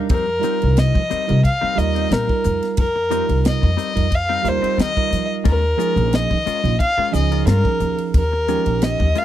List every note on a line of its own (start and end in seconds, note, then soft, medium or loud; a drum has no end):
0.09 0.37 F2 medium
0.09 0.28 G3 medium
0.09 0.28 C4 medium
0.09 0.27 D#4 medium
0.09 0.27 A#4 medium
0.09 0.80 A#4 medium
0.09 kick loud
0.09 ride medium
0.28 muted clean electric guitar stroke soft
0.40 1.00 G3 medium
0.40 0.62 G3 medium
0.40 0.61 C4 medium
0.40 1.01 D#4 medium
0.40 0.60 D#4 medium
0.40 1.00 F4 medium
0.40 1.01 A#4 medium
0.40 hi-hat pedal medium
0.40 ride medium
0.44 0.60 A#4 medium
0.61 0.90 C2 medium
0.61 muted clean electric guitar stroke soft
0.61 ride soft
0.77 1.45 D#5 medium
0.77 snare medium
0.77 ride medium
0.95 1.08 F3 medium
0.95 muted clean electric guitar stroke soft
0.95 kick medium
1.10 1.28 G3 soft
1.10 1.27 C4 soft
1.10 1.27 D#4 medium
1.10 1.27 A#4 medium
1.10 muted upright bass stroke soft
1.10 hi-hat pedal medium
1.10 ride soft
1.28 1.42 C2 medium
1.28 1.39 G3 medium
1.28 1.39 D#4 medium
1.28 1.39 F4 medium
1.28 1.39 A#4 medium
1.28 muted clean electric guitar stroke soft
1.28 ride soft
1.43 1.80 F5 medium
1.43 muted clean electric guitar stroke soft
1.43 kick medium
1.43 ride medium
1.61 1.76 G3 soft
1.61 1.76 C4 soft
1.61 1.76 D#4 medium
1.61 1.77 A#4 medium
1.61 muted upright bass stroke soft
1.76 2.04 D#2 medium
1.76 2.11 G3 medium
1.76 2.11 D#4 medium
1.76 2.11 F4 medium
1.76 2.12 A#4 medium
1.76 2.14 D#5 medium
1.76 muted clean electric guitar stroke soft
1.76 hi-hat pedal medium
1.76 ride medium
1.95 2.09 C4 soft
1.95 2.10 D#4 soft
1.95 2.10 A#4 soft
1.95 ride soft
2.10 2.26 A#2 medium
2.10 2.29 G3 soft
2.10 2.29 C4 soft
2.10 2.29 D#4 soft
2.10 2.28 A#4 soft
2.10 2.63 A#4 medium
2.10 snare medium
2.10 ride medium
2.28 2.85 G3 medium
2.28 2.85 D#4 medium
2.28 2.85 F4 medium
2.28 2.86 A#4 medium
2.28 muted upright bass stroke soft
2.28 kick medium
2.44 2.60 F2 medium
2.44 muted clean electric guitar stroke soft
2.44 hi-hat pedal medium
2.44 ride medium
2.63 snare soft
2.63 ride medium
2.77 3.20 F2 medium
2.77 3.42 A#4 medium
2.77 kick loud
2.77 ride medium
2.96 muted clean electric guitar stroke soft
3.10 3.29 G3 medium
3.10 3.69 G3 medium
3.10 3.27 C4 medium
3.10 3.69 D#4 medium
3.10 3.27 D#4 medium
3.10 3.70 F4 medium
3.10 3.27 A#4 medium
3.10 3.70 A#4 medium
3.10 hi-hat pedal medium
3.10 ride soft
3.29 3.56 C2 medium
3.29 ride medium
3.45 4.16 D#5 medium
3.45 snare loud
3.45 ride medium
3.62 3.76 F2 medium
3.62 muted clean electric guitar stroke soft
3.62 kick medium
3.77 3.96 G3 soft
3.77 3.95 C4 medium
3.77 3.95 D#4 medium
3.77 3.94 A#4 medium
3.77 hi-hat pedal medium
3.77 ride medium
3.95 4.36 F2 medium
3.95 4.07 G3 medium
3.95 4.06 D#4 medium
3.95 4.07 F4 soft
3.95 4.07 A#4 medium
3.95 muted clean electric guitar stroke soft
3.95 kick medium
3.95 ride soft
4.11 muted clean electric guitar stroke soft
4.11 kick medium
4.11 ride medium
4.15 4.50 F5 medium
4.29 4.43 G3 soft
4.29 4.43 C4 soft
4.29 4.44 D#4 medium
4.29 4.44 A#4 medium
4.43 4.60 D#2 medium
4.43 4.79 G3 medium
4.43 4.79 D#4 medium
4.43 4.80 F4 medium
4.43 4.80 A#4 medium
4.43 muted clean electric guitar stroke soft
4.43 hi-hat pedal medium
4.43 ride medium
4.48 4.80 C5 medium
4.62 4.76 C4 soft
4.62 4.77 D#4 soft
4.62 4.77 A#4 soft
4.62 muted upright bass stroke soft
4.62 ride medium
4.77 5.05 D#3 medium
4.77 4.96 G3 soft
4.77 4.94 C4 soft
4.77 4.94 D#4 medium
4.77 4.93 A#4 medium
4.77 snare medium
4.77 ride medium
4.82 5.29 D#5 medium
4.95 5.46 G3 medium
4.95 5.46 D#4 medium
4.95 5.46 F4 medium
4.95 5.46 A#4 medium
4.95 muted clean electric guitar stroke soft
4.95 kick medium
5.11 5.27 F3 medium
5.11 muted clean electric guitar stroke soft
5.11 hi-hat pedal medium
5.11 ride medium
5.44 5.73 D#2 medium
5.44 5.63 G#3 medium
5.44 5.62 C#4 medium
5.44 5.62 F4 medium
5.44 5.61 A#4 medium
5.44 kick loud
5.44 ride medium
5.49 6.16 A#4 medium
5.63 muted clean electric guitar stroke soft
5.77 6.37 F3 medium
5.77 5.97 G#3 medium
5.77 6.37 C#4 medium
5.77 5.96 C#4 medium
5.77 6.37 D#4 medium
5.77 5.95 F4 medium
5.77 6.37 G#4 medium
5.77 5.95 A#4 medium
5.77 hi-hat pedal medium
5.77 ride soft
5.96 6.24 A#1 medium
5.96 muted clean electric guitar stroke soft
5.96 ride medium
6.13 6.80 D#5 medium
6.13 snare loud
6.13 ride medium
6.30 6.44 D#3 medium
6.30 muted clean electric guitar stroke soft
6.30 kick medium
6.46 6.65 G#3 soft
6.46 6.63 C#4 medium
6.46 6.63 F4 medium
6.46 6.63 A#4 medium
6.46 muted upright bass stroke soft
6.46 hi-hat pedal medium
6.46 ride medium
6.63 6.77 A#1 medium
6.63 6.75 F3 medium
6.63 6.75 C#4 medium
6.63 6.75 D#4 medium
6.63 6.75 F4 medium
6.63 muted clean electric guitar stroke soft
6.63 ride medium
6.80 7.12 F5 medium
6.80 muted clean electric guitar stroke soft
6.80 kick medium
6.80 ride medium
6.97 7.12 G#3 medium
6.97 7.13 C#4 medium
6.97 7.13 F4 medium
6.97 7.13 A#4 medium
6.97 muted upright bass stroke soft
7.12 7.41 C#2 medium
7.12 7.48 F3 medium
7.12 7.47 C#4 medium
7.12 7.48 D#4 medium
7.12 7.48 G#4 loud
7.12 7.46 D#5 medium
7.12 muted clean electric guitar stroke soft
7.12 hi-hat pedal medium
7.12 ride soft
7.32 7.46 C#4 soft
7.32 7.46 F4 soft
7.32 7.47 A#4 medium
7.32 ride soft
7.47 7.61 G2 medium
7.47 7.65 G#3 soft
7.47 7.65 C#4 soft
7.47 7.65 F4 medium
7.47 7.96 A#4 medium
7.47 7.64 A#4 medium
7.47 snare medium
7.47 ride medium
7.64 8.21 F3 medium
7.64 8.21 C#4 medium
7.64 8.21 D#4 medium
7.64 8.22 G#4 medium
7.64 muted upright bass stroke soft
7.64 muted clean electric guitar stroke soft
7.64 kick medium
7.80 7.95 D#2 medium
7.80 muted clean electric guitar stroke soft
7.80 hi-hat pedal medium
7.80 ride medium
7.98 ride medium
8.14 8.56 D#2 medium
8.14 8.85 A#4 medium
8.14 kick loud
8.14 ride medium
8.32 muted clean electric guitar stroke soft
8.48 9.06 F3 medium
8.48 8.66 G#3 medium
8.48 8.66 C#4 medium
8.48 9.07 C#4 medium
8.48 9.07 D#4 medium
8.48 8.66 F4 medium
8.48 9.07 G4 medium
8.48 8.65 A#4 medium
8.48 hi-hat pedal medium
8.48 ride soft
8.66 8.93 A#1 medium
8.66 muted clean electric guitar stroke soft
8.66 ride medium
8.82 9.19 D#5 medium
8.82 snare loud
8.82 ride medium
9.00 9.12 D#2 medium
9.00 muted clean electric guitar stroke soft
9.00 kick medium
9.15 9.25 G#3 soft
9.15 9.25 C#4 medium
9.15 9.25 F4 medium
9.15 9.25 A#4 medium
9.15 9.25 F5 medium
9.15 hi-hat pedal medium
9.15 ride medium